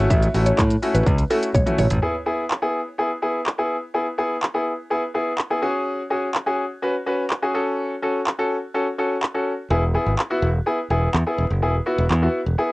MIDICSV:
0, 0, Header, 1, 5, 480
1, 0, Start_track
1, 0, Tempo, 480000
1, 104, Time_signature, 4, 2, 24, 8
1, 12720, End_track
2, 0, Start_track
2, 0, Title_t, "Synth pluck"
2, 0, Program_c, 0, 84
2, 103, Note_on_c, 0, 76, 102
2, 301, Note_off_c, 0, 76, 0
2, 463, Note_on_c, 0, 73, 77
2, 562, Note_off_c, 0, 73, 0
2, 581, Note_on_c, 0, 73, 79
2, 681, Note_off_c, 0, 73, 0
2, 944, Note_on_c, 0, 71, 76
2, 1142, Note_off_c, 0, 71, 0
2, 1304, Note_on_c, 0, 69, 88
2, 1403, Note_off_c, 0, 69, 0
2, 1544, Note_on_c, 0, 73, 97
2, 1643, Note_off_c, 0, 73, 0
2, 1784, Note_on_c, 0, 73, 91
2, 1883, Note_off_c, 0, 73, 0
2, 12720, End_track
3, 0, Start_track
3, 0, Title_t, "Grand piano"
3, 0, Program_c, 1, 0
3, 0, Note_on_c, 1, 57, 103
3, 0, Note_on_c, 1, 61, 88
3, 0, Note_on_c, 1, 64, 95
3, 0, Note_on_c, 1, 66, 109
3, 246, Note_off_c, 1, 57, 0
3, 247, Note_off_c, 1, 61, 0
3, 248, Note_off_c, 1, 64, 0
3, 249, Note_off_c, 1, 66, 0
3, 343, Note_on_c, 1, 57, 79
3, 345, Note_on_c, 1, 61, 76
3, 346, Note_on_c, 1, 64, 75
3, 349, Note_on_c, 1, 66, 86
3, 565, Note_off_c, 1, 57, 0
3, 566, Note_off_c, 1, 61, 0
3, 566, Note_off_c, 1, 64, 0
3, 568, Note_off_c, 1, 66, 0
3, 823, Note_on_c, 1, 57, 80
3, 824, Note_on_c, 1, 61, 72
3, 827, Note_on_c, 1, 64, 71
3, 828, Note_on_c, 1, 66, 87
3, 1045, Note_off_c, 1, 57, 0
3, 1046, Note_off_c, 1, 61, 0
3, 1047, Note_off_c, 1, 64, 0
3, 1047, Note_off_c, 1, 66, 0
3, 1301, Note_on_c, 1, 57, 74
3, 1303, Note_on_c, 1, 61, 71
3, 1305, Note_on_c, 1, 64, 70
3, 1306, Note_on_c, 1, 66, 86
3, 1469, Note_off_c, 1, 57, 0
3, 1470, Note_off_c, 1, 61, 0
3, 1471, Note_off_c, 1, 64, 0
3, 1471, Note_off_c, 1, 66, 0
3, 1660, Note_on_c, 1, 57, 80
3, 1662, Note_on_c, 1, 61, 69
3, 1664, Note_on_c, 1, 64, 68
3, 1666, Note_on_c, 1, 66, 86
3, 1828, Note_off_c, 1, 57, 0
3, 1829, Note_off_c, 1, 61, 0
3, 1830, Note_off_c, 1, 64, 0
3, 1831, Note_off_c, 1, 66, 0
3, 2021, Note_on_c, 1, 59, 83
3, 2024, Note_on_c, 1, 64, 77
3, 2025, Note_on_c, 1, 68, 96
3, 2133, Note_off_c, 1, 59, 0
3, 2135, Note_off_c, 1, 64, 0
3, 2136, Note_off_c, 1, 68, 0
3, 2260, Note_on_c, 1, 59, 81
3, 2262, Note_on_c, 1, 64, 79
3, 2265, Note_on_c, 1, 68, 95
3, 2428, Note_off_c, 1, 59, 0
3, 2429, Note_off_c, 1, 64, 0
3, 2431, Note_off_c, 1, 68, 0
3, 2620, Note_on_c, 1, 59, 83
3, 2622, Note_on_c, 1, 64, 73
3, 2625, Note_on_c, 1, 68, 95
3, 2788, Note_off_c, 1, 59, 0
3, 2789, Note_off_c, 1, 64, 0
3, 2791, Note_off_c, 1, 68, 0
3, 2982, Note_on_c, 1, 59, 84
3, 2986, Note_on_c, 1, 64, 78
3, 2989, Note_on_c, 1, 68, 96
3, 3094, Note_off_c, 1, 59, 0
3, 3096, Note_off_c, 1, 64, 0
3, 3097, Note_off_c, 1, 68, 0
3, 3221, Note_on_c, 1, 59, 82
3, 3223, Note_on_c, 1, 64, 72
3, 3225, Note_on_c, 1, 68, 92
3, 3389, Note_off_c, 1, 59, 0
3, 3390, Note_off_c, 1, 64, 0
3, 3391, Note_off_c, 1, 68, 0
3, 3582, Note_on_c, 1, 59, 84
3, 3585, Note_on_c, 1, 64, 76
3, 3587, Note_on_c, 1, 68, 89
3, 3749, Note_off_c, 1, 59, 0
3, 3751, Note_off_c, 1, 64, 0
3, 3752, Note_off_c, 1, 68, 0
3, 3941, Note_on_c, 1, 59, 86
3, 3944, Note_on_c, 1, 64, 77
3, 3945, Note_on_c, 1, 68, 93
3, 4053, Note_off_c, 1, 59, 0
3, 4055, Note_off_c, 1, 64, 0
3, 4056, Note_off_c, 1, 68, 0
3, 4181, Note_on_c, 1, 59, 86
3, 4184, Note_on_c, 1, 64, 75
3, 4186, Note_on_c, 1, 68, 96
3, 4349, Note_off_c, 1, 59, 0
3, 4350, Note_off_c, 1, 64, 0
3, 4351, Note_off_c, 1, 68, 0
3, 4542, Note_on_c, 1, 59, 87
3, 4544, Note_on_c, 1, 64, 79
3, 4547, Note_on_c, 1, 68, 94
3, 4709, Note_off_c, 1, 59, 0
3, 4710, Note_off_c, 1, 64, 0
3, 4712, Note_off_c, 1, 68, 0
3, 4904, Note_on_c, 1, 59, 84
3, 4907, Note_on_c, 1, 64, 78
3, 4909, Note_on_c, 1, 68, 96
3, 5015, Note_off_c, 1, 59, 0
3, 5016, Note_off_c, 1, 64, 0
3, 5018, Note_off_c, 1, 68, 0
3, 5144, Note_on_c, 1, 59, 77
3, 5146, Note_on_c, 1, 64, 74
3, 5149, Note_on_c, 1, 68, 91
3, 5310, Note_off_c, 1, 59, 0
3, 5311, Note_off_c, 1, 64, 0
3, 5313, Note_off_c, 1, 68, 0
3, 5503, Note_on_c, 1, 59, 85
3, 5505, Note_on_c, 1, 64, 77
3, 5508, Note_on_c, 1, 68, 90
3, 5610, Note_off_c, 1, 68, 0
3, 5620, Note_on_c, 1, 61, 88
3, 5623, Note_on_c, 1, 66, 82
3, 5624, Note_off_c, 1, 59, 0
3, 5625, Note_off_c, 1, 64, 0
3, 5625, Note_on_c, 1, 68, 99
3, 6006, Note_off_c, 1, 61, 0
3, 6008, Note_off_c, 1, 66, 0
3, 6009, Note_off_c, 1, 68, 0
3, 6103, Note_on_c, 1, 61, 86
3, 6105, Note_on_c, 1, 66, 80
3, 6107, Note_on_c, 1, 68, 91
3, 6270, Note_off_c, 1, 61, 0
3, 6271, Note_off_c, 1, 66, 0
3, 6272, Note_off_c, 1, 68, 0
3, 6461, Note_on_c, 1, 61, 88
3, 6465, Note_on_c, 1, 66, 77
3, 6467, Note_on_c, 1, 68, 92
3, 6629, Note_off_c, 1, 61, 0
3, 6631, Note_off_c, 1, 66, 0
3, 6632, Note_off_c, 1, 68, 0
3, 6822, Note_on_c, 1, 61, 86
3, 6824, Note_on_c, 1, 66, 80
3, 6827, Note_on_c, 1, 71, 95
3, 6934, Note_off_c, 1, 61, 0
3, 6935, Note_off_c, 1, 66, 0
3, 6936, Note_off_c, 1, 71, 0
3, 7063, Note_on_c, 1, 61, 86
3, 7066, Note_on_c, 1, 66, 77
3, 7068, Note_on_c, 1, 71, 92
3, 7230, Note_off_c, 1, 61, 0
3, 7231, Note_off_c, 1, 66, 0
3, 7232, Note_off_c, 1, 71, 0
3, 7423, Note_on_c, 1, 61, 83
3, 7426, Note_on_c, 1, 66, 79
3, 7428, Note_on_c, 1, 68, 94
3, 7528, Note_off_c, 1, 61, 0
3, 7530, Note_off_c, 1, 66, 0
3, 7543, Note_on_c, 1, 61, 92
3, 7545, Note_on_c, 1, 66, 83
3, 7546, Note_off_c, 1, 68, 0
3, 7548, Note_on_c, 1, 69, 99
3, 7928, Note_off_c, 1, 61, 0
3, 7929, Note_off_c, 1, 66, 0
3, 7930, Note_off_c, 1, 69, 0
3, 8024, Note_on_c, 1, 61, 86
3, 8027, Note_on_c, 1, 66, 79
3, 8029, Note_on_c, 1, 69, 93
3, 8190, Note_off_c, 1, 61, 0
3, 8192, Note_off_c, 1, 66, 0
3, 8193, Note_off_c, 1, 69, 0
3, 8385, Note_on_c, 1, 61, 84
3, 8386, Note_on_c, 1, 66, 77
3, 8389, Note_on_c, 1, 69, 98
3, 8551, Note_off_c, 1, 61, 0
3, 8551, Note_off_c, 1, 66, 0
3, 8553, Note_off_c, 1, 69, 0
3, 8742, Note_on_c, 1, 61, 91
3, 8744, Note_on_c, 1, 66, 78
3, 8747, Note_on_c, 1, 69, 94
3, 8854, Note_off_c, 1, 61, 0
3, 8855, Note_off_c, 1, 66, 0
3, 8857, Note_off_c, 1, 69, 0
3, 8982, Note_on_c, 1, 61, 83
3, 8984, Note_on_c, 1, 66, 78
3, 8987, Note_on_c, 1, 69, 89
3, 9149, Note_off_c, 1, 61, 0
3, 9150, Note_off_c, 1, 66, 0
3, 9152, Note_off_c, 1, 69, 0
3, 9342, Note_on_c, 1, 61, 84
3, 9344, Note_on_c, 1, 66, 77
3, 9347, Note_on_c, 1, 69, 88
3, 9509, Note_off_c, 1, 61, 0
3, 9510, Note_off_c, 1, 66, 0
3, 9512, Note_off_c, 1, 69, 0
3, 9704, Note_on_c, 1, 59, 86
3, 9707, Note_on_c, 1, 64, 81
3, 9709, Note_on_c, 1, 68, 93
3, 9815, Note_off_c, 1, 59, 0
3, 9816, Note_off_c, 1, 64, 0
3, 9817, Note_off_c, 1, 68, 0
3, 9945, Note_on_c, 1, 59, 87
3, 9947, Note_on_c, 1, 64, 76
3, 9950, Note_on_c, 1, 68, 94
3, 10111, Note_off_c, 1, 59, 0
3, 10112, Note_off_c, 1, 64, 0
3, 10113, Note_off_c, 1, 68, 0
3, 10304, Note_on_c, 1, 59, 85
3, 10306, Note_on_c, 1, 64, 79
3, 10308, Note_on_c, 1, 66, 97
3, 10470, Note_off_c, 1, 59, 0
3, 10471, Note_off_c, 1, 64, 0
3, 10472, Note_off_c, 1, 66, 0
3, 10663, Note_on_c, 1, 59, 89
3, 10666, Note_on_c, 1, 64, 82
3, 10669, Note_on_c, 1, 68, 97
3, 10774, Note_off_c, 1, 59, 0
3, 10776, Note_off_c, 1, 64, 0
3, 10777, Note_off_c, 1, 68, 0
3, 10904, Note_on_c, 1, 59, 82
3, 10907, Note_on_c, 1, 64, 77
3, 10909, Note_on_c, 1, 68, 90
3, 11070, Note_off_c, 1, 59, 0
3, 11072, Note_off_c, 1, 64, 0
3, 11073, Note_off_c, 1, 68, 0
3, 11266, Note_on_c, 1, 59, 84
3, 11268, Note_on_c, 1, 64, 81
3, 11270, Note_on_c, 1, 68, 89
3, 11431, Note_off_c, 1, 59, 0
3, 11432, Note_off_c, 1, 64, 0
3, 11434, Note_off_c, 1, 68, 0
3, 11623, Note_on_c, 1, 59, 85
3, 11624, Note_on_c, 1, 64, 81
3, 11628, Note_on_c, 1, 68, 95
3, 11734, Note_off_c, 1, 59, 0
3, 11735, Note_off_c, 1, 64, 0
3, 11737, Note_off_c, 1, 68, 0
3, 11860, Note_on_c, 1, 59, 90
3, 11863, Note_on_c, 1, 64, 83
3, 11866, Note_on_c, 1, 66, 95
3, 12029, Note_off_c, 1, 59, 0
3, 12030, Note_off_c, 1, 64, 0
3, 12031, Note_off_c, 1, 66, 0
3, 12222, Note_on_c, 1, 59, 84
3, 12225, Note_on_c, 1, 64, 78
3, 12228, Note_on_c, 1, 66, 91
3, 12390, Note_off_c, 1, 59, 0
3, 12391, Note_off_c, 1, 64, 0
3, 12392, Note_off_c, 1, 66, 0
3, 12582, Note_on_c, 1, 59, 88
3, 12585, Note_on_c, 1, 64, 80
3, 12587, Note_on_c, 1, 68, 97
3, 12694, Note_off_c, 1, 59, 0
3, 12695, Note_off_c, 1, 64, 0
3, 12696, Note_off_c, 1, 68, 0
3, 12720, End_track
4, 0, Start_track
4, 0, Title_t, "Fingered electric bass"
4, 0, Program_c, 2, 33
4, 104, Note_on_c, 2, 33, 121
4, 270, Note_off_c, 2, 33, 0
4, 343, Note_on_c, 2, 33, 102
4, 510, Note_off_c, 2, 33, 0
4, 585, Note_on_c, 2, 45, 102
4, 751, Note_off_c, 2, 45, 0
4, 944, Note_on_c, 2, 33, 93
4, 1027, Note_off_c, 2, 33, 0
4, 1064, Note_on_c, 2, 37, 104
4, 1230, Note_off_c, 2, 37, 0
4, 1546, Note_on_c, 2, 35, 97
4, 1628, Note_off_c, 2, 35, 0
4, 1784, Note_on_c, 2, 33, 100
4, 1867, Note_off_c, 2, 33, 0
4, 1904, Note_on_c, 2, 33, 95
4, 1987, Note_off_c, 2, 33, 0
4, 9703, Note_on_c, 2, 28, 99
4, 9952, Note_off_c, 2, 28, 0
4, 10064, Note_on_c, 2, 32, 78
4, 10147, Note_off_c, 2, 32, 0
4, 10424, Note_on_c, 2, 28, 89
4, 10590, Note_off_c, 2, 28, 0
4, 10903, Note_on_c, 2, 28, 84
4, 11069, Note_off_c, 2, 28, 0
4, 11142, Note_on_c, 2, 40, 99
4, 11226, Note_off_c, 2, 40, 0
4, 11383, Note_on_c, 2, 28, 91
4, 11466, Note_off_c, 2, 28, 0
4, 11504, Note_on_c, 2, 30, 85
4, 11623, Note_off_c, 2, 30, 0
4, 11623, Note_on_c, 2, 28, 114
4, 11789, Note_off_c, 2, 28, 0
4, 11984, Note_on_c, 2, 28, 96
4, 12067, Note_off_c, 2, 28, 0
4, 12104, Note_on_c, 2, 40, 107
4, 12270, Note_off_c, 2, 40, 0
4, 12464, Note_on_c, 2, 28, 78
4, 12547, Note_off_c, 2, 28, 0
4, 12720, End_track
5, 0, Start_track
5, 0, Title_t, "Drums"
5, 104, Note_on_c, 9, 36, 127
5, 105, Note_on_c, 9, 82, 86
5, 204, Note_off_c, 9, 36, 0
5, 205, Note_off_c, 9, 82, 0
5, 225, Note_on_c, 9, 42, 51
5, 225, Note_on_c, 9, 82, 54
5, 325, Note_off_c, 9, 42, 0
5, 325, Note_off_c, 9, 82, 0
5, 345, Note_on_c, 9, 46, 84
5, 345, Note_on_c, 9, 82, 58
5, 445, Note_off_c, 9, 46, 0
5, 445, Note_off_c, 9, 82, 0
5, 461, Note_on_c, 9, 42, 75
5, 461, Note_on_c, 9, 82, 76
5, 561, Note_off_c, 9, 42, 0
5, 561, Note_off_c, 9, 82, 0
5, 584, Note_on_c, 9, 82, 83
5, 585, Note_on_c, 9, 36, 112
5, 587, Note_on_c, 9, 39, 116
5, 684, Note_off_c, 9, 82, 0
5, 685, Note_off_c, 9, 36, 0
5, 687, Note_off_c, 9, 39, 0
5, 704, Note_on_c, 9, 42, 59
5, 704, Note_on_c, 9, 82, 57
5, 804, Note_off_c, 9, 42, 0
5, 804, Note_off_c, 9, 82, 0
5, 826, Note_on_c, 9, 46, 83
5, 826, Note_on_c, 9, 82, 55
5, 926, Note_off_c, 9, 46, 0
5, 926, Note_off_c, 9, 82, 0
5, 948, Note_on_c, 9, 42, 85
5, 948, Note_on_c, 9, 82, 86
5, 1048, Note_off_c, 9, 42, 0
5, 1048, Note_off_c, 9, 82, 0
5, 1064, Note_on_c, 9, 36, 121
5, 1066, Note_on_c, 9, 82, 83
5, 1164, Note_off_c, 9, 36, 0
5, 1166, Note_off_c, 9, 82, 0
5, 1183, Note_on_c, 9, 42, 57
5, 1183, Note_on_c, 9, 82, 56
5, 1283, Note_off_c, 9, 42, 0
5, 1283, Note_off_c, 9, 82, 0
5, 1305, Note_on_c, 9, 46, 77
5, 1305, Note_on_c, 9, 82, 54
5, 1405, Note_off_c, 9, 46, 0
5, 1405, Note_off_c, 9, 82, 0
5, 1428, Note_on_c, 9, 42, 74
5, 1428, Note_on_c, 9, 82, 77
5, 1528, Note_off_c, 9, 42, 0
5, 1528, Note_off_c, 9, 82, 0
5, 1545, Note_on_c, 9, 48, 63
5, 1546, Note_on_c, 9, 36, 106
5, 1546, Note_on_c, 9, 82, 77
5, 1645, Note_off_c, 9, 48, 0
5, 1646, Note_off_c, 9, 36, 0
5, 1646, Note_off_c, 9, 82, 0
5, 1665, Note_on_c, 9, 47, 70
5, 1667, Note_on_c, 9, 42, 54
5, 1667, Note_on_c, 9, 82, 56
5, 1765, Note_off_c, 9, 47, 0
5, 1767, Note_off_c, 9, 42, 0
5, 1767, Note_off_c, 9, 82, 0
5, 1783, Note_on_c, 9, 46, 82
5, 1783, Note_on_c, 9, 82, 60
5, 1784, Note_on_c, 9, 45, 98
5, 1883, Note_off_c, 9, 46, 0
5, 1883, Note_off_c, 9, 82, 0
5, 1884, Note_off_c, 9, 45, 0
5, 1902, Note_on_c, 9, 42, 85
5, 1902, Note_on_c, 9, 82, 84
5, 1905, Note_on_c, 9, 43, 102
5, 2002, Note_off_c, 9, 42, 0
5, 2002, Note_off_c, 9, 82, 0
5, 2005, Note_off_c, 9, 43, 0
5, 2508, Note_on_c, 9, 39, 101
5, 2608, Note_off_c, 9, 39, 0
5, 3464, Note_on_c, 9, 39, 102
5, 3564, Note_off_c, 9, 39, 0
5, 4426, Note_on_c, 9, 39, 101
5, 4526, Note_off_c, 9, 39, 0
5, 5382, Note_on_c, 9, 39, 94
5, 5482, Note_off_c, 9, 39, 0
5, 6346, Note_on_c, 9, 39, 101
5, 6446, Note_off_c, 9, 39, 0
5, 7304, Note_on_c, 9, 39, 101
5, 7403, Note_off_c, 9, 39, 0
5, 8267, Note_on_c, 9, 39, 106
5, 8367, Note_off_c, 9, 39, 0
5, 9225, Note_on_c, 9, 39, 101
5, 9325, Note_off_c, 9, 39, 0
5, 10188, Note_on_c, 9, 39, 102
5, 10288, Note_off_c, 9, 39, 0
5, 11144, Note_on_c, 9, 39, 100
5, 11244, Note_off_c, 9, 39, 0
5, 12107, Note_on_c, 9, 39, 105
5, 12207, Note_off_c, 9, 39, 0
5, 12720, End_track
0, 0, End_of_file